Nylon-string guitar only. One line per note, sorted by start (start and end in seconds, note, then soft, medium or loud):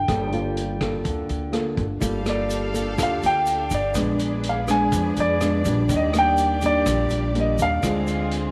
0.09 1.03 G3 medium
0.09 0.29 A#3 medium
0.09 0.29 F4 soft
0.09 0.29 A4 medium
0.32 0.77 A#3 soft
0.32 0.77 F4 medium
0.32 0.78 A4 medium
0.81 1.50 A#3 soft
0.81 1.50 F4 medium
0.81 1.50 A4 medium
1.04 1.99 D3 soft
1.52 1.85 A#3 medium
1.52 1.86 F4 medium
1.52 1.86 A4 medium
2.00 2.96 G3 medium
2.00 2.22 A#3 medium
2.00 2.22 F4 soft
2.00 2.22 A4 medium
2.25 2.70 A#3 medium
2.25 2.71 F4 medium
2.25 2.71 A4 medium
2.73 2.94 A#3 medium
2.73 2.94 F4 medium
2.73 2.95 A4 medium
2.97 3.93 D3 soft
2.97 3.63 A#3 soft
2.97 3.64 F4 medium
2.97 3.64 A4 medium
3.94 4.89 A#2 medium
3.94 4.64 G#3 medium
3.94 4.64 B3 medium
3.94 4.64 D4 medium
4.68 5.37 G#3 medium
4.68 5.37 B3 soft
4.68 5.37 D4 medium
4.92 5.86 F3 soft
5.41 5.61 G#3 medium
5.41 5.62 B3 medium
5.41 5.62 D4 medium
5.66 6.10 G3 medium
5.66 6.10 A#3 medium
5.66 6.10 D4 medium
5.90 6.84 D#3 medium
6.14 6.58 G3 medium
6.14 6.58 A#3 medium
6.14 6.58 D4 medium
6.63 7.31 G3 medium
6.63 7.31 A#3 medium
6.63 7.31 D4 medium
6.87 7.81 A#2 medium
7.35 7.79 G3 medium
7.35 7.79 A#3 medium
7.35 7.79 D4 medium
7.83 8.51 D3 medium
7.83 8.51 G#3 medium
7.83 8.51 C4 soft
7.83 8.51 F4 medium